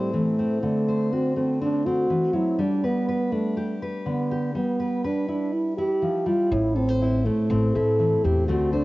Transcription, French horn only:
Already playing: G3
0.15 A3
0.62 A3
1.12 C4
1.37 C4
1.61 D4
1.86 F#4
2.35 E4
2.60 D4
2.85 B3
3.32 A3
4.06 B3
4.55 B3
5.05 D4
5.29 D4
5.53 E4
5.77 G4
6.27 F4
6.52 E4
6.76 C4
7.26 A3
7.75 A4
8.24 G4
8.48 F#4
8.73 D4

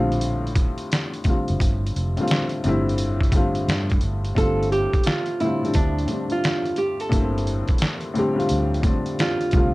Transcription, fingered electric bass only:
Already playing: A#1
1.50 F#1
1.61 G1
1.96 F1
2.65 G1
3.68 G2
4.03 G1
4.37 G1
5.76 D2
7.12 G1
8.51 D2
9.54 C2

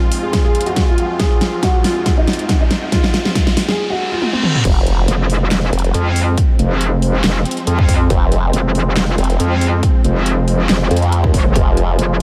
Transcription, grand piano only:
Already playing: F4
0.23 G#4
0.45 G#4
0.66 F#4
0.88 F4
1.20 G#4
1.63 F#4
1.84 F4
2.17 D#4
2.61 D#4
2.92 F4
3.25 F4
3.68 G#4
3.90 F#4
4.12 F4
4.33 C4

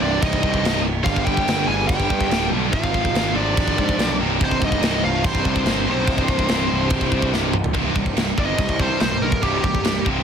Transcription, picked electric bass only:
0.00 C1
0.22 C1
0.43 C2
0.64 C1
1.06 G1
1.27 G1
1.46 G1
1.68 G1
1.89 G1
2.11 G2
2.29 D1
2.50 B1
2.74 G#1
3.14 G#1
3.35 G#1
3.57 G#1
3.79 G#2
3.98 B1
4.20 C1
4.41 C1
4.62 C1
4.81 C1
5.04 C1
5.24 C1
5.45 C2
5.66 G1
5.86 B1
6.08 C1
6.50 C1
6.71 C1
6.91 C1
7.12 C2
7.34 C1
7.75 C1
7.96 C1
8.16 C1
8.38 G1
8.59 C2
9.01 B1
9.22 B1
9.43 C1
9.63 C1
9.83 C1
10.06 C1

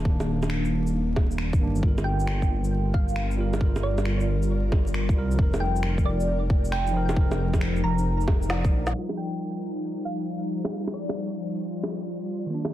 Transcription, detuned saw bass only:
Already playing: D#1
0.72 D#1
1.39 D#1
1.61 G1
1.83 G1
2.50 G1
4.28 G1
4.95 G1
5.17 C2
5.39 F1
6.05 F1
7.83 F1
8.72 A#1

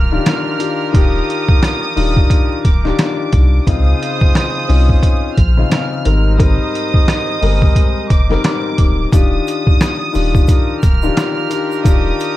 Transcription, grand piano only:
0.12 D#3 D4 F4 G4
0.26 D#3 D4 F4 G4
0.58 D#3 D4 F4 G4
0.92 D#3 D4 F4 G4
1.96 D#3 D4 F4 G4
2.84 D#3 D4 F4 G4
3.67 C#3 C4 D#4 F4
4.68 C4 C#4 D#4 F4
5.57 C#3 C4 D#4 F4
5.69 C#3 C4 D#4 F4
6.04 G#2 G3 C4 A#4
6.37 G#2 G3 C4 A#4
7.41 G3 G#3 C4 A#4
8.29 G#2 G3 C4 A#4
9.12 D#3 D4 F4 G4
10.13 D#3 D4 F4 G4
11.03 D#3 D4 F4 G4
11.17 D#3 D4 F4 G4
11.49 D#3 D4 F4 G4
11.83 D#3 D4 F4 G4

